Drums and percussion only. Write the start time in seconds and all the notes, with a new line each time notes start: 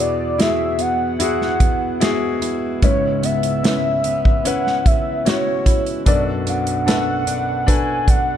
0.40 snare, closed hi-hat
0.79 closed hi-hat
1.20 closed hi-hat
1.42 snare
1.60 kick, closed hi-hat
2.01 snare, closed hi-hat
2.42 closed hi-hat
2.82 kick, closed hi-hat
3.23 closed hi-hat
3.43 closed hi-hat
3.64 snare, closed hi-hat
4.04 closed hi-hat
4.25 kick
4.45 closed hi-hat
4.67 snare
4.86 kick, closed hi-hat
5.26 snare, closed hi-hat
5.66 kick, closed hi-hat
5.86 closed hi-hat
6.06 kick, closed hi-hat
6.47 closed hi-hat
6.67 closed hi-hat
6.88 snare, closed hi-hat
7.27 closed hi-hat
7.68 kick, closed hi-hat
8.08 kick, closed hi-hat